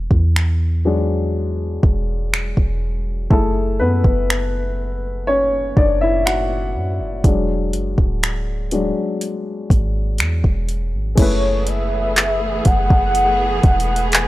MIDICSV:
0, 0, Header, 1, 6, 480
1, 0, Start_track
1, 0, Key_signature, 3, "minor"
1, 0, Tempo, 983607
1, 1614, Time_signature, 4, 2, 24, 8
1, 6968, End_track
2, 0, Start_track
2, 0, Title_t, "Soft synth lead"
2, 0, Program_c, 0, 80
2, 5459, Note_on_c, 0, 73, 98
2, 5699, Note_on_c, 0, 76, 103
2, 5707, Note_off_c, 0, 73, 0
2, 6177, Note_on_c, 0, 78, 124
2, 6184, Note_off_c, 0, 76, 0
2, 6655, Note_off_c, 0, 78, 0
2, 6657, Note_on_c, 0, 78, 107
2, 6879, Note_off_c, 0, 78, 0
2, 6896, Note_on_c, 0, 80, 125
2, 6968, Note_off_c, 0, 80, 0
2, 6968, End_track
3, 0, Start_track
3, 0, Title_t, "Grand piano"
3, 0, Program_c, 1, 0
3, 0, Control_c, 1, 64, 127
3, 415, Note_on_c, 1, 54, 53
3, 418, Note_on_c, 1, 56, 50
3, 422, Note_on_c, 1, 62, 60
3, 734, Note_off_c, 1, 54, 0
3, 735, Note_off_c, 1, 56, 0
3, 737, Note_off_c, 1, 62, 0
3, 1612, Note_on_c, 1, 69, 79
3, 1615, Note_on_c, 1, 68, 54
3, 1618, Note_on_c, 1, 57, 61
3, 1619, Control_c, 1, 64, 0
3, 1621, Note_on_c, 1, 64, 60
3, 1696, Control_c, 1, 64, 127
3, 1836, Note_off_c, 1, 69, 0
3, 1841, Note_off_c, 1, 57, 0
3, 1852, Note_on_c, 1, 71, 83
3, 1862, Note_on_c, 1, 59, 65
3, 2558, Note_off_c, 1, 59, 0
3, 2573, Note_on_c, 1, 73, 94
3, 2581, Note_on_c, 1, 61, 75
3, 2594, Note_off_c, 1, 71, 0
3, 2801, Note_off_c, 1, 61, 0
3, 2814, Note_on_c, 1, 74, 86
3, 2821, Note_off_c, 1, 73, 0
3, 2822, Note_on_c, 1, 62, 67
3, 2930, Note_off_c, 1, 62, 0
3, 2934, Note_on_c, 1, 76, 89
3, 2935, Note_off_c, 1, 64, 0
3, 2937, Note_off_c, 1, 74, 0
3, 2943, Note_on_c, 1, 64, 73
3, 3050, Note_off_c, 1, 64, 0
3, 3053, Note_on_c, 1, 78, 90
3, 3057, Note_off_c, 1, 76, 0
3, 3063, Note_on_c, 1, 66, 69
3, 3394, Note_off_c, 1, 78, 0
3, 3399, Note_off_c, 1, 66, 0
3, 3515, Note_off_c, 1, 68, 0
3, 3536, Note_on_c, 1, 54, 53
3, 3538, Note_on_c, 1, 56, 47
3, 3541, Control_c, 1, 64, 0
3, 3541, Note_on_c, 1, 62, 57
3, 3633, Control_c, 1, 64, 127
3, 3854, Note_off_c, 1, 54, 0
3, 3855, Note_off_c, 1, 56, 0
3, 3857, Note_off_c, 1, 62, 0
3, 4256, Note_on_c, 1, 54, 49
3, 4258, Note_on_c, 1, 56, 43
3, 4260, Note_on_c, 1, 62, 52
3, 4475, Note_off_c, 1, 54, 0
3, 4476, Note_off_c, 1, 56, 0
3, 4477, Note_off_c, 1, 62, 0
3, 5443, Note_on_c, 1, 56, 51
3, 5451, Note_on_c, 1, 61, 61
3, 5458, Note_on_c, 1, 64, 58
3, 5460, Control_c, 1, 64, 0
3, 5466, Note_on_c, 1, 68, 59
3, 5474, Note_on_c, 1, 71, 74
3, 5475, Note_on_c, 1, 57, 67
3, 5480, Note_off_c, 1, 56, 0
3, 5535, Control_c, 1, 64, 127
3, 6968, Note_off_c, 1, 57, 0
3, 6968, Note_off_c, 1, 61, 0
3, 6968, Note_off_c, 1, 64, 0
3, 6968, Note_off_c, 1, 68, 0
3, 6968, Note_off_c, 1, 71, 0
3, 6968, End_track
4, 0, Start_track
4, 0, Title_t, "String section"
4, 0, Program_c, 2, 48
4, 5453, Note_on_c, 2, 57, 75
4, 5454, Note_on_c, 2, 52, 82
4, 5454, Note_on_c, 2, 59, 73
4, 5454, Note_on_c, 2, 68, 92
4, 6968, Note_off_c, 2, 52, 0
4, 6968, Note_off_c, 2, 57, 0
4, 6968, Note_off_c, 2, 59, 0
4, 6968, Note_off_c, 2, 68, 0
4, 6968, End_track
5, 0, Start_track
5, 0, Title_t, "808-style bass"
5, 0, Program_c, 3, 38
5, 53, Note_on_c, 3, 40, 96
5, 874, Note_off_c, 3, 40, 0
5, 895, Note_on_c, 3, 28, 101
5, 1240, Note_off_c, 3, 28, 0
5, 1255, Note_on_c, 3, 28, 99
5, 1600, Note_off_c, 3, 28, 0
5, 1614, Note_on_c, 3, 30, 100
5, 1856, Note_on_c, 3, 42, 93
5, 1863, Note_off_c, 3, 30, 0
5, 1969, Note_off_c, 3, 42, 0
5, 1974, Note_on_c, 3, 30, 95
5, 2794, Note_off_c, 3, 30, 0
5, 2816, Note_on_c, 3, 30, 110
5, 3296, Note_on_c, 3, 42, 92
5, 3303, Note_off_c, 3, 30, 0
5, 3416, Note_on_c, 3, 30, 99
5, 3423, Note_off_c, 3, 42, 0
5, 3529, Note_off_c, 3, 30, 0
5, 3535, Note_on_c, 3, 28, 104
5, 3775, Note_on_c, 3, 30, 95
5, 3782, Note_off_c, 3, 28, 0
5, 3888, Note_off_c, 3, 30, 0
5, 3894, Note_on_c, 3, 26, 97
5, 4355, Note_off_c, 3, 26, 0
5, 4735, Note_on_c, 3, 32, 107
5, 4975, Note_on_c, 3, 40, 103
5, 4983, Note_off_c, 3, 32, 0
5, 5089, Note_off_c, 3, 40, 0
5, 5096, Note_on_c, 3, 28, 98
5, 5336, Note_on_c, 3, 32, 99
5, 5343, Note_off_c, 3, 28, 0
5, 5449, Note_off_c, 3, 32, 0
5, 5455, Note_on_c, 3, 30, 108
5, 6155, Note_off_c, 3, 30, 0
5, 6177, Note_on_c, 3, 30, 103
5, 6636, Note_off_c, 3, 30, 0
5, 6655, Note_on_c, 3, 28, 114
5, 6968, Note_off_c, 3, 28, 0
5, 6968, End_track
6, 0, Start_track
6, 0, Title_t, "Drums"
6, 52, Note_on_c, 9, 36, 86
6, 101, Note_off_c, 9, 36, 0
6, 177, Note_on_c, 9, 26, 110
6, 226, Note_off_c, 9, 26, 0
6, 894, Note_on_c, 9, 36, 104
6, 943, Note_off_c, 9, 36, 0
6, 1140, Note_on_c, 9, 26, 111
6, 1189, Note_off_c, 9, 26, 0
6, 1255, Note_on_c, 9, 36, 77
6, 1304, Note_off_c, 9, 36, 0
6, 1613, Note_on_c, 9, 36, 113
6, 1662, Note_off_c, 9, 36, 0
6, 1973, Note_on_c, 9, 36, 86
6, 2022, Note_off_c, 9, 36, 0
6, 2100, Note_on_c, 9, 26, 106
6, 2149, Note_off_c, 9, 26, 0
6, 2815, Note_on_c, 9, 36, 102
6, 2863, Note_off_c, 9, 36, 0
6, 3059, Note_on_c, 9, 26, 115
6, 3108, Note_off_c, 9, 26, 0
6, 3534, Note_on_c, 9, 36, 117
6, 3535, Note_on_c, 9, 42, 73
6, 3583, Note_off_c, 9, 36, 0
6, 3584, Note_off_c, 9, 42, 0
6, 3774, Note_on_c, 9, 42, 73
6, 3823, Note_off_c, 9, 42, 0
6, 3894, Note_on_c, 9, 36, 83
6, 3942, Note_off_c, 9, 36, 0
6, 4017, Note_on_c, 9, 42, 57
6, 4019, Note_on_c, 9, 26, 113
6, 4065, Note_off_c, 9, 42, 0
6, 4068, Note_off_c, 9, 26, 0
6, 4252, Note_on_c, 9, 42, 69
6, 4301, Note_off_c, 9, 42, 0
6, 4496, Note_on_c, 9, 42, 71
6, 4544, Note_off_c, 9, 42, 0
6, 4735, Note_on_c, 9, 36, 105
6, 4739, Note_on_c, 9, 42, 67
6, 4783, Note_off_c, 9, 36, 0
6, 4788, Note_off_c, 9, 42, 0
6, 4970, Note_on_c, 9, 42, 61
6, 4979, Note_on_c, 9, 26, 117
6, 5019, Note_off_c, 9, 42, 0
6, 5028, Note_off_c, 9, 26, 0
6, 5095, Note_on_c, 9, 36, 76
6, 5144, Note_off_c, 9, 36, 0
6, 5215, Note_on_c, 9, 42, 60
6, 5264, Note_off_c, 9, 42, 0
6, 5454, Note_on_c, 9, 36, 115
6, 5454, Note_on_c, 9, 42, 79
6, 5454, Note_on_c, 9, 49, 96
6, 5502, Note_off_c, 9, 42, 0
6, 5502, Note_off_c, 9, 49, 0
6, 5503, Note_off_c, 9, 36, 0
6, 5693, Note_on_c, 9, 42, 77
6, 5742, Note_off_c, 9, 42, 0
6, 5937, Note_on_c, 9, 42, 61
6, 5939, Note_on_c, 9, 39, 121
6, 5986, Note_off_c, 9, 42, 0
6, 5988, Note_off_c, 9, 39, 0
6, 6173, Note_on_c, 9, 42, 74
6, 6176, Note_on_c, 9, 36, 93
6, 6222, Note_off_c, 9, 42, 0
6, 6225, Note_off_c, 9, 36, 0
6, 6297, Note_on_c, 9, 36, 107
6, 6346, Note_off_c, 9, 36, 0
6, 6416, Note_on_c, 9, 42, 73
6, 6465, Note_off_c, 9, 42, 0
6, 6654, Note_on_c, 9, 42, 45
6, 6655, Note_on_c, 9, 36, 112
6, 6702, Note_off_c, 9, 42, 0
6, 6704, Note_off_c, 9, 36, 0
6, 6734, Note_on_c, 9, 42, 61
6, 6783, Note_off_c, 9, 42, 0
6, 6813, Note_on_c, 9, 42, 69
6, 6862, Note_off_c, 9, 42, 0
6, 6890, Note_on_c, 9, 42, 65
6, 6899, Note_on_c, 9, 39, 121
6, 6939, Note_off_c, 9, 42, 0
6, 6948, Note_off_c, 9, 39, 0
6, 6968, End_track
0, 0, End_of_file